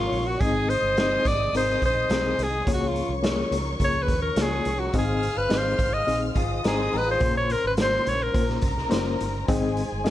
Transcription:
Already playing: C3 F3 F4 A#4 C#5 C#6
0.12 A#1, open hi-hat
0.27 F#4
0.40 G#1 D#3 G#3 C4 D#4 G#4 D#5 D#6, kick, closed hi-hat
0.69 C5, closed hi-hat
0.82 G1
0.97 C4 D#4 G#4 D#5, snare, closed hi-hat
1.25 G#1 D5, kick, closed hi-hat
1.53 G#1 C4 D#4 G#4 A#4, closed hi-hat
1.57 C5
1.70 snare
1.82 A#1 C5, kick, closed hi-hat
2.10 B1 C4 D#4 G#4 A#4, snare, closed hi-hat
2.38 C2, closed hi-hat
2.43 G#4
2.66 C#2 F3 A#3 C#4 F4 G#4 A#4 C#5 C#6, kick, closed hi-hat
2.73 F#4
2.88 F4
2.96 closed hi-hat
3.09 C2
3.23 A#3 F4 G#4 C#5, snare, closed hi-hat
3.51 C#2, closed hi-hat
3.80 C#2 A#3 F4 G#4 A#4, kick, closed hi-hat
3.84 C#5
4.02 B4
4.08 D#2, kick, closed hi-hat
4.22 A#4
4.36 C#2 A#3 F4 G#4 C#5, snare, closed hi-hat
4.41 G#4
4.65 C2, closed hi-hat
4.80 F#4
4.92 G#1 G#2 D#3 C4 D#4 G#4 C5 D#5 F5 F6, kick, closed hi-hat
4.98 G#4
5.23 closed hi-hat
5.37 G1 B4
5.49 G#1 C4 D#4 G#4 D#5, snare, closed hi-hat
5.57 C5
5.79 G#1, kick, closed hi-hat
5.93 D#5
6.07 A#1 C4 D#4 G#4 D#5, closed hi-hat
6.35 G#1 F4 G#4 D#5 D#6, kick, closed hi-hat
6.64 G#1 C4 D#4 G4 G#4 A#4 C5, snare, closed hi-hat
6.80 G#4 C5
6.93 A1 G4 A#4 B4, open hi-hat
7.06 F4 G#4
7.11 C5
7.20 A#1 A#2 C#3 A#3 C#4 F4 A#4 C5 C6, kick, closed hi-hat
7.37 C#5
7.50 A#4, closed hi-hat
7.64 G#1 B4
7.77 A#3 C#4 F4 C5, snare, closed hi-hat
7.82 C5
8.07 A#1 C#5, closed hi-hat
8.23 A#4
8.34 A#1 A#3 C#4 F4 A#4 C5 A#5, kick, closed hi-hat
8.49 snare
8.62 C2, kick, closed hi-hat
8.78 snare
8.89 F#1 A#3 C#4 F4 C5, snare, closed hi-hat
9.20 G1, closed hi-hat
9.48 G#1 D#3 G#3 C4 D#4 G#4 D#5 G#5, kick, closed hi-hat
9.77 closed hi-hat
9.92 G1
10.04 C4 D#4 G#4 D#5, snare, closed hi-hat

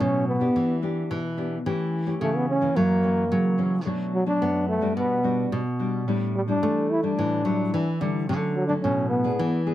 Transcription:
Already playing: F#3 A3 C#4
0.00 A2 B2 C#4
0.28 B3
0.40 B3 D4 G4
0.56 E3
0.82 B3 D4 G4
1.10 B2 E3
1.37 B3 D4 G4
1.66 E3 A3 C#4 G4
2.06 A3 C#4 G4
2.21 C#3 E3 A3
2.36 B3
2.49 C#4
2.61 E3 A#3 C#4
2.76 F#2 F#3 A#3
3.03 E3 A#3 C#4
3.31 C#3 F#3
3.58 E3 A#3 C#4
3.86 B2 F#3 A3 D4
4.14 F#3
4.26 F#3 A3 D4
4.41 F#2 B3
4.68 A3
4.81 G3 D4 F#4
4.96 B2 B3
5.23 G3 D4 F#4
5.52 B2
5.79 G3 D4 F#4
6.07 A2 G3 D4 E4
6.35 G3
6.48 G3 D4 E4
6.63 E3 A3
6.90 E4
7.03 G3 D4 E4
7.18 A2 E3
7.45 F#3 G3 D4 E4
7.73 E3
8.00 D3 G3 D4 E4
8.29 D3 F#3 A3 C#4
8.56 F#3
8.68 F#3 A3 C#4 D4
8.82 A2 B2 C#4
9.09 B3
9.24 B3 D4 G#4
9.39 E3
9.66 B3 D4 G#4

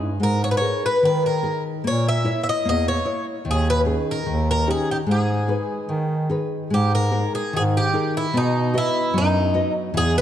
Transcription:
Already playing: G#3 C#4 D#4 E4
0.00 G2
0.20 G#2 G#3 A#4
0.44 C#5
0.51 B4
0.57 D#4 G#4 C#5
0.62 A#4
0.86 B4
1.03 D#3 B4
1.26 A#4
1.43 D#4 G#4 A#4
1.84 A#2 A#3 C#5
2.08 E5
2.24 E4 A#4 C#5
2.44 E5
2.49 D#5
2.65 E2 A#3 D#5
2.88 C#5
3.05 E4 A#4 C#5
3.45 D#2 D#3
3.51 G#4
3.70 B4
3.85 C#4 D#4 G#4
4.11 A#4
4.26 D#2 D#3
4.51 A#4
4.67 C#4 D#4 G4 G#4
4.91 G4
5.07 G#2 G#3
5.11 G#4
5.48 D#4 G#4 B4
5.88 D#3
6.30 D#4 G#4 B4
6.70 G#2 G#3 G4
6.95 A#4
7.11 D#4 G#4 A#4
7.35 G#4
7.53 G#2 D#3 G#4
7.77 G4
7.93 D#4 G#4 A#4
8.17 E4
8.34 B2 B3 D#4
8.74 F#4 B4 D#5
8.78 E4
9.14 F#2 F#3
9.18 D#4
9.54 F#4 B4 D#5
9.94 E2 E3 G#4
10.18 B4

